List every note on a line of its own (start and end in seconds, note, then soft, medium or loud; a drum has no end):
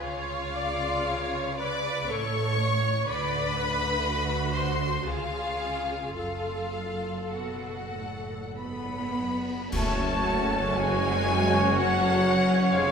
0.00 2.09 C#2 medium
0.00 2.09 C#3 medium
0.00 1.54 F4 medium
0.00 0.54 C#5 medium
0.00 1.58 F5 medium
0.55 1.07 D5 medium
1.08 1.59 C#5 medium
1.58 2.08 B4 medium
1.58 2.09 D5 loud
1.58 2.08 D6 loud
2.08 3.09 A1 medium
2.08 3.08 A2 medium
2.08 2.60 A4 medium
2.08 3.08 C#5 loud
2.08 3.09 C#6 loud
2.58 3.07 C#5 medium
3.06 5.04 D2 medium
3.06 5.03 D3 medium
3.06 4.52 B4 loud
3.06 3.57 D5 medium
3.06 4.53 B5 loud
3.57 4.06 B4 medium
4.05 5.07 F#4 medium
4.56 5.07 C5 medium
4.56 5.07 C6 loud
5.06 6.17 C#2 medium
5.06 6.17 C#3 medium
5.06 6.15 F4 medium
5.06 6.17 G#4 medium
5.06 6.15 F5 loud
6.16 9.48 F#1 medium
6.16 7.19 F#2 medium
6.16 7.30 F4 medium
6.16 9.12 A4 medium
6.16 7.30 F5 medium
7.32 7.90 B2 medium
7.32 8.58 F#4 soft
7.32 8.57 F#5 medium
7.94 8.57 A2 medium
8.54 9.66 B3 medium
8.54 9.67 B5 medium
8.58 9.17 G#2 medium
8.58 9.68 B3 medium
8.58 9.69 B5 medium
9.18 9.72 F#2 soft
9.70 12.70 F#1 loud
9.70 12.69 F#3 medium
9.70 10.75 A3 medium
9.70 9.97 A3 medium
9.70 10.76 A3 medium
9.70 12.91 C#4 medium
9.70 12.69 F#4 medium
9.70 12.70 F#4 medium
9.70 12.91 C#5 medium
9.70 10.76 A5 loud
9.70 10.78 A5 medium
9.70 concert bass drum medium
9.70 crash medium
9.99 10.24 C#4 medium
10.26 10.51 F#4 medium
10.51 10.76 A4 medium
10.73 11.75 G#3 loud
10.73 11.01 F#4 medium
10.73 11.77 G#5 loud
10.73 11.79 G#5 loud
10.77 11.77 G#3 medium
11.02 11.27 C#4 medium
11.29 11.53 A3 medium
11.54 11.77 C#4 medium
11.76 12.73 F#3 loud
11.76 12.74 F#3 loud
11.76 12.01 F#4 medium
11.76 12.73 F#5 loud
11.76 12.78 F#5 medium
12.01 12.25 A4 medium
12.26 12.49 F#4 medium
12.50 12.74 C#4 medium
12.72 12.91 F1 medium
12.72 12.91 F1 loud
12.72 12.91 F3 loud
12.72 12.91 F3 medium
12.72 12.91 G#3 medium
12.72 12.91 G#4 medium
12.72 12.91 F5 loud
12.76 12.91 G#4 medium
12.76 12.91 F5 medium